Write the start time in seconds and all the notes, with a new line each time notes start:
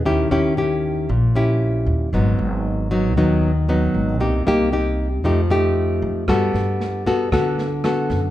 0.05 D#2 D#3 C#4 E4 G4
0.31 D#2 C#4 E4 G4
0.57 C#4 E4 G4
1.09 A#1 A#2
1.35 C#4 E4 G4
1.87 D#2
2.13 G#1 G#2 F#3 B3 D#4
2.39 G#1
2.91 F#3 B3 D#4
3.16 D#2 D#3 F#3 B3 D#4
3.69 F#3 B3 D#4
3.94 G#1
4.20 C2 C3 A#3 D#4 G4
4.47 C2 A#3 D#4 G4
4.72 A#3 D#4 G4
5.24 F2 F3 A3 D#4 G4
5.50 A3 D#4 G4
6.02 F2
6.28 G2 G3 B3 F#4 A4, kick, cross-stick, snare
6.54 G2, snare
6.80 snare
7.06 B3 F#4 A4, kick, snare
7.32 D2 D3 B3 F#4 A4, kick, cross-stick, snare
7.58 snare
7.84 B3 F#4 A4, cross-stick, snare
8.10 F#2, kick, snare